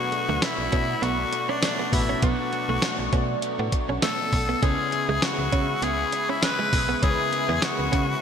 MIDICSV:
0, 0, Header, 1, 9, 480
1, 0, Start_track
1, 0, Tempo, 600000
1, 1781, Time_signature, 4, 2, 24, 8
1, 6573, End_track
2, 0, Start_track
2, 0, Title_t, "Analog synth pad"
2, 0, Program_c, 0, 89
2, 0, Note_on_c, 0, 57, 85
2, 0, Note_on_c, 0, 74, 81
2, 0, Note_on_c, 0, 78, 77
2, 0, Note_on_c, 0, 83, 92
2, 1508, Note_off_c, 0, 83, 0
2, 1541, Note_on_c, 0, 85, 89
2, 3665, Note_off_c, 0, 78, 0
2, 3667, Note_off_c, 0, 57, 0
2, 3667, Note_off_c, 0, 74, 0
2, 3695, Note_on_c, 0, 68, 89
2, 3695, Note_on_c, 0, 83, 85
2, 3699, Note_on_c, 0, 76, 76
2, 6573, Note_off_c, 0, 68, 0
2, 6573, Note_off_c, 0, 76, 0
2, 6573, Note_off_c, 0, 83, 0
2, 6573, Note_off_c, 0, 85, 0
2, 6573, End_track
3, 0, Start_track
3, 0, Title_t, "Tenor saxophone"
3, 0, Program_c, 1, 66
3, 0, Note_on_c, 1, 66, 108
3, 348, Note_on_c, 1, 64, 105
3, 360, Note_off_c, 1, 66, 0
3, 825, Note_on_c, 1, 66, 111
3, 837, Note_off_c, 1, 64, 0
3, 1198, Note_on_c, 1, 62, 97
3, 1210, Note_off_c, 1, 66, 0
3, 1547, Note_on_c, 1, 64, 88
3, 1559, Note_off_c, 1, 62, 0
3, 1780, Note_off_c, 1, 64, 0
3, 1784, Note_on_c, 1, 66, 100
3, 2710, Note_off_c, 1, 66, 0
3, 3226, Note_on_c, 1, 69, 111
3, 3706, Note_on_c, 1, 68, 103
3, 3718, Note_off_c, 1, 69, 0
3, 4191, Note_on_c, 1, 66, 104
3, 4203, Note_off_c, 1, 68, 0
3, 4668, Note_on_c, 1, 68, 109
3, 4680, Note_off_c, 1, 66, 0
3, 5040, Note_on_c, 1, 64, 98
3, 5052, Note_off_c, 1, 68, 0
3, 5147, Note_on_c, 1, 71, 116
3, 5159, Note_off_c, 1, 64, 0
3, 5624, Note_off_c, 1, 71, 0
3, 5629, Note_on_c, 1, 68, 106
3, 6110, Note_on_c, 1, 66, 104
3, 6122, Note_off_c, 1, 68, 0
3, 6573, Note_off_c, 1, 66, 0
3, 6573, End_track
4, 0, Start_track
4, 0, Title_t, "Tine electric piano"
4, 0, Program_c, 2, 4
4, 0, Control_c, 2, 64, 127
4, 0, Note_on_c, 2, 47, 70
4, 0, Note_on_c, 2, 57, 68
4, 0, Note_on_c, 2, 59, 64
4, 0, Note_on_c, 2, 62, 62
4, 0, Note_on_c, 2, 66, 65
4, 0, Note_on_c, 2, 71, 77
4, 308, Note_off_c, 2, 47, 0
4, 1502, Note_off_c, 2, 57, 0
4, 1505, Note_off_c, 2, 59, 0
4, 1508, Note_off_c, 2, 62, 0
4, 1509, Note_off_c, 2, 66, 0
4, 1512, Note_off_c, 2, 71, 0
4, 1528, Note_on_c, 2, 57, 71
4, 1536, Note_on_c, 2, 59, 61
4, 1538, Note_on_c, 2, 47, 68
4, 1539, Note_on_c, 2, 62, 64
4, 1543, Note_on_c, 2, 66, 66
4, 1548, Note_on_c, 2, 71, 77
4, 2227, Note_off_c, 2, 47, 0
4, 3422, Note_off_c, 2, 57, 0
4, 3426, Note_off_c, 2, 59, 0
4, 3428, Note_off_c, 2, 62, 0
4, 3430, Note_off_c, 2, 66, 0
4, 3432, Note_off_c, 2, 71, 0
4, 3688, Note_on_c, 2, 56, 68
4, 3692, Note_on_c, 2, 59, 61
4, 3696, Note_on_c, 2, 61, 60
4, 3699, Note_on_c, 2, 49, 68
4, 3704, Note_on_c, 2, 64, 63
4, 3709, Note_on_c, 2, 71, 73
4, 3710, Control_c, 2, 64, 0
4, 3862, Control_c, 2, 64, 127
4, 4388, Note_off_c, 2, 49, 0
4, 5582, Note_off_c, 2, 56, 0
4, 5584, Note_off_c, 2, 59, 0
4, 5586, Note_off_c, 2, 61, 0
4, 5590, Note_off_c, 2, 64, 0
4, 5593, Note_off_c, 2, 71, 0
4, 5609, Note_on_c, 2, 56, 69
4, 5616, Note_on_c, 2, 59, 65
4, 5619, Note_on_c, 2, 49, 69
4, 5619, Note_on_c, 2, 61, 65
4, 5624, Note_on_c, 2, 64, 64
4, 5628, Note_on_c, 2, 70, 60
4, 5681, Note_off_c, 2, 70, 0
4, 5681, Note_on_c, 2, 71, 77
4, 6308, Note_off_c, 2, 49, 0
4, 6573, Note_off_c, 2, 56, 0
4, 6573, Note_off_c, 2, 59, 0
4, 6573, Note_off_c, 2, 61, 0
4, 6573, Note_off_c, 2, 64, 0
4, 6573, Note_off_c, 2, 71, 0
4, 6573, End_track
5, 0, Start_track
5, 0, Title_t, "Clean electric guitar"
5, 0, Program_c, 3, 27
5, 232, Note_on_c, 3, 57, 83
5, 320, Note_off_c, 3, 57, 0
5, 578, Note_on_c, 3, 61, 72
5, 687, Note_off_c, 3, 61, 0
5, 818, Note_on_c, 3, 59, 89
5, 927, Note_off_c, 3, 59, 0
5, 1193, Note_on_c, 3, 61, 82
5, 1281, Note_off_c, 3, 61, 0
5, 1435, Note_on_c, 3, 59, 72
5, 1522, Note_off_c, 3, 59, 0
5, 1674, Note_on_c, 3, 61, 83
5, 1762, Note_off_c, 3, 61, 0
5, 1785, Note_on_c, 3, 59, 88
5, 1891, Note_off_c, 3, 59, 0
5, 2154, Note_on_c, 3, 57, 76
5, 2242, Note_off_c, 3, 57, 0
5, 2502, Note_on_c, 3, 61, 73
5, 2609, Note_off_c, 3, 61, 0
5, 2876, Note_on_c, 3, 59, 76
5, 2963, Note_off_c, 3, 59, 0
5, 3114, Note_on_c, 3, 61, 76
5, 3202, Note_off_c, 3, 61, 0
5, 3223, Note_on_c, 3, 57, 80
5, 3330, Note_off_c, 3, 57, 0
5, 3592, Note_on_c, 3, 59, 79
5, 3680, Note_off_c, 3, 59, 0
5, 3701, Note_on_c, 3, 61, 90
5, 3809, Note_off_c, 3, 61, 0
5, 4072, Note_on_c, 3, 56, 82
5, 4161, Note_off_c, 3, 56, 0
5, 4420, Note_on_c, 3, 61, 74
5, 4528, Note_off_c, 3, 61, 0
5, 4662, Note_on_c, 3, 59, 88
5, 4769, Note_off_c, 3, 59, 0
5, 5034, Note_on_c, 3, 61, 80
5, 5122, Note_off_c, 3, 61, 0
5, 5272, Note_on_c, 3, 56, 75
5, 5361, Note_off_c, 3, 56, 0
5, 5511, Note_on_c, 3, 59, 84
5, 5600, Note_off_c, 3, 59, 0
5, 5619, Note_on_c, 3, 61, 89
5, 5728, Note_off_c, 3, 61, 0
5, 5991, Note_on_c, 3, 59, 80
5, 6080, Note_off_c, 3, 59, 0
5, 6337, Note_on_c, 3, 61, 72
5, 6447, Note_off_c, 3, 61, 0
5, 6573, End_track
6, 0, Start_track
6, 0, Title_t, "Overdriven electric guitar"
6, 0, Program_c, 4, 29
6, 0, Note_on_c, 4, 47, 60
6, 0, Note_on_c, 4, 54, 68
6, 0, Note_on_c, 4, 59, 70
6, 805, Note_off_c, 4, 47, 0
6, 815, Note_on_c, 4, 47, 63
6, 818, Note_off_c, 4, 54, 0
6, 827, Note_on_c, 4, 54, 70
6, 835, Note_off_c, 4, 59, 0
6, 838, Note_on_c, 4, 59, 73
6, 1287, Note_off_c, 4, 47, 0
6, 1297, Note_on_c, 4, 47, 65
6, 1301, Note_off_c, 4, 54, 0
6, 1310, Note_on_c, 4, 54, 61
6, 1317, Note_off_c, 4, 59, 0
6, 1320, Note_on_c, 4, 59, 70
6, 1762, Note_off_c, 4, 47, 0
6, 1771, Note_on_c, 4, 47, 81
6, 1783, Note_off_c, 4, 54, 0
6, 1793, Note_on_c, 4, 54, 80
6, 1805, Note_off_c, 4, 59, 0
6, 1809, Note_on_c, 4, 59, 82
6, 2726, Note_off_c, 4, 47, 0
6, 2736, Note_on_c, 4, 47, 74
6, 2738, Note_off_c, 4, 54, 0
6, 2748, Note_on_c, 4, 54, 69
6, 2755, Note_off_c, 4, 59, 0
6, 2758, Note_on_c, 4, 59, 78
6, 3205, Note_off_c, 4, 47, 0
6, 3215, Note_on_c, 4, 47, 63
6, 3219, Note_off_c, 4, 54, 0
6, 3229, Note_on_c, 4, 54, 60
6, 3235, Note_off_c, 4, 59, 0
6, 3238, Note_on_c, 4, 59, 64
6, 3688, Note_off_c, 4, 47, 0
6, 3691, Note_on_c, 4, 49, 84
6, 3705, Note_off_c, 4, 54, 0
6, 3711, Note_on_c, 4, 56, 88
6, 3715, Note_off_c, 4, 59, 0
6, 3727, Note_on_c, 4, 61, 93
6, 4648, Note_off_c, 4, 49, 0
6, 4657, Note_on_c, 4, 49, 61
6, 4661, Note_off_c, 4, 56, 0
6, 4671, Note_on_c, 4, 56, 72
6, 4672, Note_off_c, 4, 61, 0
6, 4682, Note_on_c, 4, 61, 77
6, 5124, Note_off_c, 4, 49, 0
6, 5134, Note_on_c, 4, 49, 65
6, 5139, Note_off_c, 4, 56, 0
6, 5149, Note_on_c, 4, 56, 69
6, 5151, Note_off_c, 4, 61, 0
6, 5160, Note_on_c, 4, 61, 65
6, 5609, Note_off_c, 4, 49, 0
6, 5618, Note_on_c, 4, 49, 79
6, 5619, Note_off_c, 4, 56, 0
6, 5626, Note_off_c, 4, 61, 0
6, 5628, Note_on_c, 4, 56, 82
6, 5635, Note_on_c, 4, 61, 95
6, 5846, Note_off_c, 4, 61, 0
6, 5855, Note_on_c, 4, 61, 51
6, 5859, Note_off_c, 4, 49, 0
6, 5864, Note_off_c, 4, 56, 0
6, 5880, Note_on_c, 4, 56, 44
6, 6573, Note_off_c, 4, 56, 0
6, 6573, Note_off_c, 4, 61, 0
6, 6573, End_track
7, 0, Start_track
7, 0, Title_t, "FM bass"
7, 0, Program_c, 5, 39
7, 231, Note_on_c, 5, 38, 92
7, 313, Note_off_c, 5, 38, 0
7, 468, Note_on_c, 5, 35, 89
7, 551, Note_off_c, 5, 35, 0
7, 580, Note_on_c, 5, 47, 105
7, 760, Note_off_c, 5, 47, 0
7, 819, Note_on_c, 5, 35, 104
7, 1000, Note_off_c, 5, 35, 0
7, 1541, Note_on_c, 5, 33, 91
7, 1721, Note_off_c, 5, 33, 0
7, 1780, Note_on_c, 5, 35, 109
7, 1879, Note_off_c, 5, 35, 0
7, 2150, Note_on_c, 5, 35, 93
7, 2232, Note_off_c, 5, 35, 0
7, 2393, Note_on_c, 5, 35, 91
7, 2474, Note_off_c, 5, 35, 0
7, 2501, Note_on_c, 5, 47, 96
7, 2681, Note_off_c, 5, 47, 0
7, 2873, Note_on_c, 5, 45, 95
7, 2954, Note_off_c, 5, 45, 0
7, 3112, Note_on_c, 5, 35, 90
7, 3193, Note_off_c, 5, 35, 0
7, 3460, Note_on_c, 5, 35, 93
7, 3640, Note_off_c, 5, 35, 0
7, 3701, Note_on_c, 5, 37, 100
7, 3800, Note_off_c, 5, 37, 0
7, 4071, Note_on_c, 5, 37, 97
7, 4152, Note_off_c, 5, 37, 0
7, 4309, Note_on_c, 5, 37, 103
7, 4391, Note_off_c, 5, 37, 0
7, 4420, Note_on_c, 5, 49, 98
7, 4600, Note_off_c, 5, 49, 0
7, 4657, Note_on_c, 5, 37, 92
7, 4838, Note_off_c, 5, 37, 0
7, 5383, Note_on_c, 5, 35, 101
7, 5562, Note_off_c, 5, 35, 0
7, 5622, Note_on_c, 5, 37, 102
7, 5720, Note_off_c, 5, 37, 0
7, 5992, Note_on_c, 5, 40, 97
7, 6073, Note_off_c, 5, 40, 0
7, 6232, Note_on_c, 5, 37, 93
7, 6313, Note_off_c, 5, 37, 0
7, 6342, Note_on_c, 5, 49, 106
7, 6521, Note_off_c, 5, 49, 0
7, 6573, End_track
8, 0, Start_track
8, 0, Title_t, "Muted clean electric guitar strokes"
8, 97, Note_on_c, 9, 29, 49
8, 177, Note_off_c, 9, 29, 0
8, 1061, Note_on_c, 9, 29, 47
8, 1141, Note_off_c, 9, 29, 0
8, 1541, Note_on_c, 9, 29, 45
8, 1621, Note_off_c, 9, 29, 0
8, 2023, Note_on_c, 9, 29, 49
8, 2103, Note_off_c, 9, 29, 0
8, 2984, Note_on_c, 9, 29, 47
8, 3064, Note_off_c, 9, 29, 0
8, 3463, Note_on_c, 9, 29, 43
8, 3543, Note_off_c, 9, 29, 0
8, 3943, Note_on_c, 9, 29, 46
8, 4023, Note_off_c, 9, 29, 0
8, 4904, Note_on_c, 9, 29, 48
8, 4984, Note_off_c, 9, 29, 0
8, 5381, Note_on_c, 9, 29, 45
8, 5461, Note_off_c, 9, 29, 0
8, 5861, Note_on_c, 9, 29, 50
8, 5941, Note_off_c, 9, 29, 0
8, 6573, End_track
9, 0, Start_track
9, 0, Title_t, "Drums"
9, 98, Note_on_c, 9, 42, 55
9, 178, Note_off_c, 9, 42, 0
9, 337, Note_on_c, 9, 38, 114
9, 338, Note_on_c, 9, 54, 66
9, 340, Note_on_c, 9, 42, 89
9, 417, Note_off_c, 9, 38, 0
9, 418, Note_off_c, 9, 54, 0
9, 420, Note_off_c, 9, 42, 0
9, 579, Note_on_c, 9, 42, 72
9, 581, Note_on_c, 9, 36, 101
9, 659, Note_off_c, 9, 42, 0
9, 661, Note_off_c, 9, 36, 0
9, 823, Note_on_c, 9, 42, 87
9, 903, Note_off_c, 9, 42, 0
9, 1060, Note_on_c, 9, 42, 78
9, 1140, Note_off_c, 9, 42, 0
9, 1299, Note_on_c, 9, 54, 69
9, 1300, Note_on_c, 9, 38, 113
9, 1301, Note_on_c, 9, 42, 80
9, 1379, Note_off_c, 9, 54, 0
9, 1380, Note_off_c, 9, 38, 0
9, 1381, Note_off_c, 9, 42, 0
9, 1542, Note_on_c, 9, 36, 92
9, 1544, Note_on_c, 9, 46, 78
9, 1622, Note_off_c, 9, 36, 0
9, 1624, Note_off_c, 9, 46, 0
9, 1779, Note_on_c, 9, 42, 88
9, 1780, Note_on_c, 9, 36, 121
9, 1859, Note_off_c, 9, 42, 0
9, 1860, Note_off_c, 9, 36, 0
9, 2021, Note_on_c, 9, 42, 52
9, 2101, Note_off_c, 9, 42, 0
9, 2258, Note_on_c, 9, 38, 109
9, 2259, Note_on_c, 9, 54, 63
9, 2260, Note_on_c, 9, 42, 86
9, 2338, Note_off_c, 9, 38, 0
9, 2339, Note_off_c, 9, 54, 0
9, 2340, Note_off_c, 9, 42, 0
9, 2501, Note_on_c, 9, 42, 72
9, 2502, Note_on_c, 9, 36, 103
9, 2581, Note_off_c, 9, 42, 0
9, 2582, Note_off_c, 9, 36, 0
9, 2739, Note_on_c, 9, 42, 83
9, 2819, Note_off_c, 9, 42, 0
9, 2979, Note_on_c, 9, 36, 91
9, 2979, Note_on_c, 9, 42, 81
9, 3059, Note_off_c, 9, 36, 0
9, 3059, Note_off_c, 9, 42, 0
9, 3218, Note_on_c, 9, 54, 67
9, 3219, Note_on_c, 9, 38, 114
9, 3220, Note_on_c, 9, 42, 76
9, 3298, Note_off_c, 9, 54, 0
9, 3299, Note_off_c, 9, 38, 0
9, 3300, Note_off_c, 9, 42, 0
9, 3460, Note_on_c, 9, 46, 73
9, 3461, Note_on_c, 9, 36, 92
9, 3540, Note_off_c, 9, 46, 0
9, 3541, Note_off_c, 9, 36, 0
9, 3701, Note_on_c, 9, 36, 117
9, 3701, Note_on_c, 9, 42, 83
9, 3781, Note_off_c, 9, 36, 0
9, 3781, Note_off_c, 9, 42, 0
9, 3939, Note_on_c, 9, 42, 54
9, 4019, Note_off_c, 9, 42, 0
9, 4178, Note_on_c, 9, 38, 116
9, 4179, Note_on_c, 9, 54, 62
9, 4181, Note_on_c, 9, 42, 87
9, 4258, Note_off_c, 9, 38, 0
9, 4259, Note_off_c, 9, 54, 0
9, 4261, Note_off_c, 9, 42, 0
9, 4419, Note_on_c, 9, 42, 69
9, 4422, Note_on_c, 9, 36, 104
9, 4499, Note_off_c, 9, 42, 0
9, 4502, Note_off_c, 9, 36, 0
9, 4659, Note_on_c, 9, 42, 86
9, 4739, Note_off_c, 9, 42, 0
9, 4900, Note_on_c, 9, 42, 79
9, 4980, Note_off_c, 9, 42, 0
9, 5140, Note_on_c, 9, 54, 70
9, 5141, Note_on_c, 9, 38, 117
9, 5141, Note_on_c, 9, 42, 81
9, 5220, Note_off_c, 9, 54, 0
9, 5221, Note_off_c, 9, 38, 0
9, 5221, Note_off_c, 9, 42, 0
9, 5382, Note_on_c, 9, 46, 74
9, 5383, Note_on_c, 9, 36, 96
9, 5462, Note_off_c, 9, 46, 0
9, 5463, Note_off_c, 9, 36, 0
9, 5622, Note_on_c, 9, 36, 111
9, 5622, Note_on_c, 9, 42, 85
9, 5702, Note_off_c, 9, 36, 0
9, 5702, Note_off_c, 9, 42, 0
9, 5861, Note_on_c, 9, 42, 53
9, 5941, Note_off_c, 9, 42, 0
9, 6098, Note_on_c, 9, 38, 108
9, 6099, Note_on_c, 9, 54, 59
9, 6100, Note_on_c, 9, 42, 88
9, 6178, Note_off_c, 9, 38, 0
9, 6179, Note_off_c, 9, 54, 0
9, 6180, Note_off_c, 9, 42, 0
9, 6342, Note_on_c, 9, 42, 70
9, 6343, Note_on_c, 9, 36, 101
9, 6422, Note_off_c, 9, 42, 0
9, 6423, Note_off_c, 9, 36, 0
9, 6573, End_track
0, 0, End_of_file